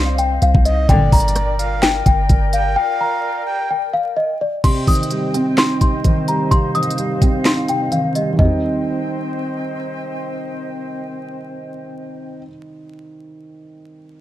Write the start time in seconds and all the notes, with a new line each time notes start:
Already playing: C2 C4 C5 D#5 F5 C6
0.18 G5, closed hi-hat
0.42 C2 F5, closed hi-hat
0.55 C2, kick
0.65 D#5, closed hi-hat
0.88 G1 A#1 G2 D3 A#4 D5 G5, kick, closed hi-hat
1.12 G1 A#5, kick, closed hi-hat, open hi-hat
1.20 closed hi-hat
1.28 closed hi-hat
1.36 cross-stick, closed hi-hat
1.59 F5, closed hi-hat
1.82 G5, snare, clap, closed hi-hat
2.06 G1 G5, kick, closed hi-hat
2.29 G1, kick, closed hi-hat
2.53 F5 G5, closed hi-hat
2.76 F5 G5
3.01 A#5
3.47 G5
3.70 G5
3.93 F5
4.16 D#5
4.41 D5
4.64 C3 C4 C5 D#5 G5 C6, kick, closed hi-hat, crash
4.87 D#3 D#6, kick, closed hi-hat, open hi-hat
4.95 closed hi-hat
5.03 closed hi-hat
5.11 G3, closed hi-hat
5.34 C4, closed hi-hat
5.58 D#4 C6, snare, clap, closed hi-hat
5.81 C3 C6, kick, closed hi-hat
6.04 D#3, kick, closed hi-hat
6.28 G3 A#5, closed hi-hat
6.51 C3 F5 C6, kick, closed hi-hat
6.75 D#3 D#6, closed hi-hat
6.83 closed hi-hat
6.91 closed hi-hat
6.98 G3, closed hi-hat
7.22 C4, kick, closed hi-hat
7.45 D#4 C6, snare, clap, closed hi-hat
7.68 C3 G5, closed hi-hat
7.92 D#3 F5, closed hi-hat
8.15 G3 D#5, closed hi-hat
8.33 D#3
8.37 G3 C4 C5 D#5 G5, kick, floor tom
8.41 C4 D#4